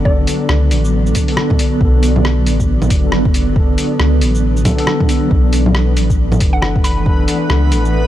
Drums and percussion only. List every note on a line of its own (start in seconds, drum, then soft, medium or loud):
0.05 kick loud
0.27 open hi-hat medium
0.27 shaker medium
0.49 cross-stick loud
0.71 open hi-hat medium
0.71 shaker medium
0.84 shaker soft
1.06 shaker soft
1.15 kick medium
1.15 open hi-hat medium
1.15 shaker medium
1.28 open hi-hat soft
1.37 cross-stick loud
1.50 kick loud
1.50 low bongo soft
1.59 open hi-hat medium
1.59 shaker medium
1.81 kick loud
2.03 open hi-hat medium
2.03 shaker medium
2.16 low bongo medium
2.25 cross-stick loud
2.47 open hi-hat medium
2.47 shaker medium
2.60 kick medium
2.60 shaker soft
2.82 low bongo medium
2.82 shaker soft
2.90 kick loud
2.90 open hi-hat medium
2.90 shaker medium
3.12 cross-stick loud
3.25 kick loud
3.34 open hi-hat medium
3.34 shaker medium
3.56 kick loud
3.78 open hi-hat medium
3.78 shaker medium
4.00 cross-stick loud
4.22 open hi-hat medium
4.22 shaker medium
4.35 shaker soft
4.57 shaker soft
4.65 kick medium
4.65 open hi-hat medium
4.65 low bongo medium
4.65 shaker medium
4.78 open hi-hat soft
4.87 cross-stick loud
5.00 kick loud
5.00 low bongo soft
5.09 open hi-hat medium
5.09 shaker medium
5.31 kick loud
5.53 open hi-hat medium
5.53 shaker medium
5.66 low bongo medium
5.75 cross-stick loud
5.97 open hi-hat medium
5.97 shaker medium
6.10 kick medium
6.10 shaker soft
6.32 low bongo medium
6.32 shaker soft
6.40 kick loud
6.40 open hi-hat medium
6.40 shaker medium
6.62 cross-stick loud
6.76 kick loud
6.84 open hi-hat medium
6.84 shaker medium
7.06 kick loud
7.28 open hi-hat medium
7.28 shaker medium
7.50 cross-stick loud
7.72 open hi-hat medium
7.72 shaker medium
7.85 shaker soft